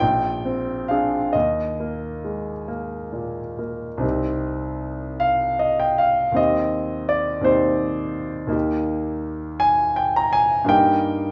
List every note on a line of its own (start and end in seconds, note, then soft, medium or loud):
0.00 1.30 A#1 medium
0.00 0.88 G5 medium
0.45 1.16 C4 soft
0.88 1.31 D4 soft
0.88 1.31 G#4 soft
0.88 1.34 F5 medium
1.33 3.99 D#2 soft
1.33 3.58 D#5 medium
1.80 2.51 A#3 soft
2.25 2.68 G#3 soft
2.68 3.40 A#3 soft
3.13 3.86 A#2 soft
3.59 4.03 A#3 soft
3.98 6.31 C2 soft
3.98 6.32 C4 soft
3.98 6.33 D#4 soft
4.02 6.33 G4 soft
5.20 5.60 F5 medium
5.59 5.80 D#5 medium
5.80 5.99 G5 medium
5.98 6.37 F5 medium
6.32 7.39 D#2 soft
6.32 7.41 C4 soft
6.32 7.42 D#4 soft
6.36 7.44 G4 soft
6.36 7.11 D#5 medium
7.09 7.46 D5 medium
7.41 8.45 D#2 soft
7.41 8.48 C4 soft
7.41 8.48 D#4 soft
7.41 8.52 C5 medium
7.45 8.49 G4 soft
8.47 10.63 D#2 soft
8.47 10.64 A#3 soft
8.47 10.65 D#4 soft
8.52 10.66 G4 soft
9.60 9.97 G#5 medium
9.96 10.16 G5 medium
10.16 10.35 A#5 medium
10.33 10.69 G#5 medium
10.65 11.32 G2 medium
10.65 11.32 A#3 soft
10.65 11.32 D#4 soft
10.69 11.32 G4 soft
10.69 11.32 G5 medium